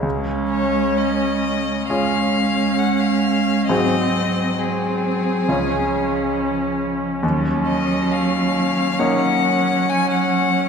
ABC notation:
X:1
M:4/4
L:1/16
Q:1/4=68
K:Db
V:1 name="Violin"
z2 d2 e4 f4 g f3 | e4 A8- A2 z2 | z2 e2 f4 g4 a g3 |]
V:2 name="Grand piano"
D,,8 [DFA]8 | [A,,CGA]8 [D,,DFA]8 | E,,8 [B,Ed]8 |]
V:3 name="Viola"
D8 D8 | C4 C4 D8 | D8 D8 |]
V:4 name="Cello" clef=bass
A,8 A,8 | G,4 G,4 F,8 | G,8 G,8 |]